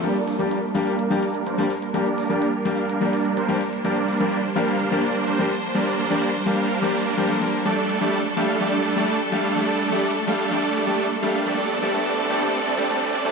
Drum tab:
HH |xxoxx-oxxxoxxxox|xxoxx-oxxxoxxxox|xxoxx-oxxxoxxxox|xxoxx-oxxxoxxxox|

HH |xxoxx-oxxxoxxxox|xxoxx-oxxxoxxxox|xxoxx-oxxxoxxxox|